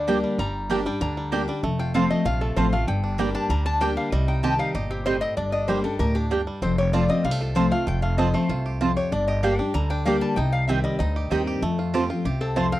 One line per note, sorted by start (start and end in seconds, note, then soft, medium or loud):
0.00 0.22 D2 medium
0.00 0.36 D3 medium
0.00 0.23 G3 medium
0.00 0.20 D5 medium
0.07 0.37 G3 medium
0.07 0.17 A#3 medium
0.07 0.38 A#3 medium
0.07 0.52 D4 medium
0.07 0.38 D4 medium
0.07 0.17 G4 medium
0.07 0.38 G4 medium
0.07 0.17 D5 loud
0.07 0.17 G5 loud
0.24 0.38 G3 medium
0.38 0.84 G1 loud
0.38 0.98 G2 medium
0.38 0.83 G3 medium
0.38 0.83 A#5 loud
0.69 0.85 G3 medium
0.69 0.79 A#3 loud
0.69 0.85 A#3 medium
0.69 1.00 D4 medium
0.69 0.86 D4 loud
0.69 0.79 G4 loud
0.69 0.84 G4 medium
0.69 0.79 D5 loud
0.69 0.79 G5 loud
0.85 1.16 G3 medium
0.85 1.01 D4 medium
0.85 1.00 G4 medium
0.85 1.01 G5 medium
1.01 1.47 D2 loud
1.01 1.60 D3 loud
1.01 1.32 D4 medium
1.01 1.45 A#5 medium
1.17 1.47 G3 medium
1.32 1.47 G3 medium
1.32 1.41 A#3 loud
1.32 1.48 A#3 medium
1.32 1.64 D4 medium
1.32 1.48 D4 medium
1.32 1.41 G4 loud
1.32 1.46 G4 medium
1.32 1.41 D5 loud
1.32 1.42 G5 loud
1.48 1.63 G3 medium
1.48 1.63 D4 soft
1.48 1.63 G4 medium
1.63 2.09 F1 loud
1.63 2.23 F2 medium
1.63 2.07 A3 medium
1.79 2.23 F4 medium
1.79 1.94 G5 loud
1.94 2.10 F3 medium
1.94 2.10 A3 medium
1.94 2.04 C4 loud
1.94 2.38 C4 medium
1.94 2.10 C4 medium
1.94 2.04 F4 loud
1.94 2.09 F4 medium
1.94 2.04 C5 loud
1.94 2.10 F5 loud
1.94 2.04 A5 loud
2.10 2.40 A3 medium
2.10 2.26 C4 medium
2.10 2.25 F4 medium
2.10 2.25 D#5 medium
2.25 2.52 A#1 loud
2.25 2.85 C3 medium
2.25 2.56 F4 medium
2.25 2.41 F5 loud
2.41 2.72 A3 medium
2.41 2.56 A4 medium
2.56 2.83 A1 medium
2.56 2.72 F3 medium
2.56 2.72 A3 medium
2.56 2.66 C4 loud
2.56 2.72 C4 loud
2.56 2.88 F4 medium
2.56 2.66 F4 loud
2.56 2.71 F4 loud
2.56 2.72 C5 loud
2.56 2.66 C5 loud
2.56 2.66 A5 loud
2.72 2.88 A3 medium
2.72 2.88 C4 soft
2.72 2.87 F4 medium
2.72 2.87 F5 loud
2.87 3.33 G1 loud
2.87 3.47 G2 medium
2.87 3.32 D3 medium
2.87 3.32 G5 loud
3.04 3.34 D4 medium
3.18 3.48 G3 medium
3.18 3.49 G3 medium
3.18 3.28 A#3 loud
3.18 3.49 A#3 medium
3.18 3.49 D4 medium
3.18 3.28 G4 loud
3.18 3.49 G4 medium
3.18 3.28 D5 loud
3.18 3.28 G5 loud
3.35 3.65 D4 medium
3.35 3.49 A5 loud
3.49 3.96 D2 medium
3.49 4.09 D3 medium
3.49 3.94 G3 medium
3.49 3.65 A#5 loud
3.66 3.80 D4 medium
3.66 3.81 A5 loud
3.81 4.11 G3 medium
3.81 3.90 A#3 medium
3.81 4.11 A#3 loud
3.81 4.13 D4 medium
3.81 4.11 D4 medium
3.81 3.90 G4 loud
3.81 4.11 G4 loud
3.81 3.91 D5 loud
3.81 3.96 G5 loud
3.81 3.91 G5 loud
3.97 4.11 G3 medium
3.97 4.12 F5 loud
4.12 4.58 C2 loud
4.12 4.72 C3 medium
4.12 5.06 G3 medium
4.12 4.28 D#5 medium
4.28 4.59 D#4 medium
4.28 4.43 G5 loud
4.43 4.73 D#3 medium
4.43 4.73 G3 medium
4.43 4.53 C4 medium
4.43 4.73 C4 medium
4.43 4.53 G4 loud
4.43 4.74 G4 medium
4.43 4.53 D#5 loud
4.43 4.53 G5 loud
4.43 4.59 A5 loud
4.59 5.03 D#4 medium
4.59 4.74 F5 loud
4.74 5.20 G1 loud
4.74 5.04 A#2 medium
4.74 5.19 G4 medium
4.74 4.90 D#5 medium
4.91 5.21 C4 medium
4.91 5.06 G4 medium
5.06 5.36 A2 medium
5.06 5.37 G3 medium
5.06 5.15 C4 loud
5.06 5.15 G4 medium
5.06 5.21 C5 loud
5.06 5.15 D#5 loud
5.06 5.16 G5 loud
5.21 5.37 C4 medium
5.21 5.36 D#5 loud
5.37 5.83 G1 medium
5.37 5.97 G2 medium
5.37 5.52 D4 medium
5.37 5.52 D5 medium
5.52 5.83 D4 medium
5.52 5.68 D#5 loud
5.68 5.84 G3 medium
5.68 6.13 G3 medium
5.68 5.77 A#3 medium
5.68 5.84 A#3 medium
5.68 5.84 D4 medium
5.68 5.78 G4 loud
5.68 5.83 G4 medium
5.68 5.83 C5 medium
5.68 5.78 D5 loud
5.68 5.78 G5 medium
5.84 6.15 D4 medium
5.84 6.00 D4 medium
5.84 5.99 G4 medium
5.84 5.99 A4 medium
5.99 6.45 D2 medium
5.99 6.30 A2 medium
5.99 6.44 G4 medium
5.99 6.15 A#4 loud
6.15 6.30 D4 medium
6.15 6.24 G4 medium
6.31 6.61 G2 medium
6.31 6.40 A#3 medium
6.31 6.62 D4 medium
6.31 6.40 G4 loud
6.31 6.40 D5 loud
6.31 6.40 G5 loud
6.47 6.62 G3 medium
6.62 7.08 F1 loud
6.62 7.22 F2 medium
6.62 7.09 C4 medium
6.62 6.78 C5 medium
6.78 7.22 G4 medium
6.78 6.93 C#5 loud
6.93 7.08 F3 medium
6.93 7.09 A3 medium
6.93 7.02 C4 loud
6.93 7.09 C4 medium
6.93 7.37 F4 medium
6.93 7.03 F4 loud
6.93 7.07 F4 loud
6.93 7.03 C5 loud
6.93 7.09 D5 medium
6.93 7.03 A5 loud
7.09 7.53 C4 medium
7.09 7.24 C4 medium
7.09 7.24 F4 medium
7.09 7.24 D#5 loud
7.24 7.70 C2 loud
7.24 7.84 C3 medium
7.24 7.31 G3 medium
7.24 7.40 F5 medium
7.31 7.56 A3 medium
7.41 7.84 F4 medium
7.41 7.56 A4 medium
7.55 7.71 F3 medium
7.55 7.71 A3 medium
7.55 7.65 C4 medium
7.55 8.00 C4 medium
7.55 7.71 C4 medium
7.55 7.65 F4 loud
7.55 7.70 F4 loud
7.55 7.71 C5 loud
7.55 7.65 C5 loud
7.55 7.65 A5 loud
7.71 8.02 A3 medium
7.71 7.87 C4 soft
7.71 7.86 F4 medium
7.71 7.87 F5 loud
7.87 8.33 F1 medium
7.87 8.46 F2 medium
7.87 8.31 F4 medium
7.87 8.02 G5 loud
8.02 8.33 A3 medium
8.02 8.18 F5 loud
8.18 8.33 F3 medium
8.18 8.34 A3 medium
8.18 8.27 C4 loud
8.18 8.62 C4 medium
8.18 8.34 C4 medium
8.18 8.28 F4 medium
8.18 8.33 F4 loud
8.18 8.28 C5 loud
8.18 8.34 D#5 loud
8.18 8.28 A5 loud
8.34 8.78 A3 medium
8.34 8.50 C4 medium
8.34 8.49 F4 medium
8.34 8.77 C5 medium
8.49 8.95 C2 medium
8.49 9.09 C3 medium
8.49 8.80 F4 medium
8.66 8.96 G4 medium
8.81 9.11 F2 medium
8.81 8.90 C4 loud
8.81 9.12 F4 medium
8.81 8.90 F4 loud
8.81 8.90 C5 loud
8.81 8.91 A5 loud
8.97 9.12 G4 medium
8.97 9.12 C#5 medium
9.12 9.58 G1 loud
9.12 9.72 G2 medium
9.12 9.42 D4 medium
9.12 9.27 D5 loud
9.28 9.72 G4 medium
9.28 9.43 D#5 medium
9.43 9.59 G3 medium
9.43 9.52 A#3 loud
9.43 9.59 A#3 medium
9.43 9.58 D4 medium
9.43 9.59 D4 medium
9.43 9.53 G4 medium
9.43 9.58 G4 medium
9.43 9.53 D5 loud
9.43 9.59 F5 loud
9.43 9.53 G5 loud
9.59 9.89 D4 medium
9.59 9.75 D4 medium
9.59 9.74 G4 medium
9.59 9.74 G5 loud
9.74 10.21 D2 medium
9.74 10.34 D3 loud
9.74 10.19 G3 medium
9.74 9.90 A#5 loud
9.90 10.05 D4 medium
9.90 10.05 G5 loud
10.05 10.36 G3 medium
10.05 10.15 A#3 loud
10.05 10.36 A#3 medium
10.05 10.37 D4 medium
10.05 10.36 D4 medium
10.05 10.15 G4 loud
10.05 10.36 G4 loud
10.05 10.15 D5 loud
10.05 10.21 F5 medium
10.05 10.16 G5 loud
10.21 10.37 G3 medium
10.21 10.36 A5 loud
10.36 10.83 C2 loud
10.36 10.97 C3 medium
10.36 10.81 D#4 medium
10.36 10.52 G5 loud
10.52 10.67 F5 loud
10.68 10.98 D#3 medium
10.68 10.99 G3 medium
10.68 10.78 C4 medium
10.68 11.13 C4 medium
10.68 10.99 C4 medium
10.68 10.78 G4 loud
10.68 10.99 G4 medium
10.68 10.78 D#5 loud
10.68 10.83 E5 medium
10.68 10.78 G5 loud
10.84 11.28 G3 medium
10.84 10.98 D#5 loud
10.99 11.26 D2 loud
10.99 11.60 G2 loud
10.99 11.30 D#4 medium
10.99 11.89 D#5 medium
11.16 11.46 G4 medium
11.30 11.58 D#2 medium
11.30 11.61 D#3 medium
11.30 11.61 G3 medium
11.30 11.40 C4 medium
11.30 11.61 C4 loud
11.30 11.63 D#4 medium
11.30 11.40 G4 loud
11.30 11.62 G4 medium
11.30 11.40 D#5 loud
11.30 11.41 G5 loud
11.47 11.63 G4 medium
11.62 12.08 F2 loud
11.62 12.22 F2 loud
11.62 12.07 A3 medium
11.79 12.09 F4 medium
11.94 12.09 F3 medium
11.94 12.09 A3 medium
11.94 12.03 C4 loud
11.94 12.10 C4 medium
11.94 12.03 F4 loud
11.94 12.08 F4 medium
11.94 12.24 G4 medium
11.94 12.03 C5 loud
11.94 12.04 A5 loud
12.10 12.25 C4 medium
12.10 12.25 F4 medium
12.10 12.54 F4 medium
12.25 12.71 C2 medium
12.25 12.80 C3 loud
12.25 12.69 G4 medium
12.41 12.71 C4 medium
12.41 12.56 A4 medium
12.56 12.80 F2 medium
12.56 12.80 A3 medium
12.56 12.65 C4 loud
12.56 12.66 F4 loud
12.56 12.72 C5 loud
12.56 12.66 C5 loud
12.56 12.66 A5 loud
12.72 12.80 C4 medium
12.72 12.80 F5 loud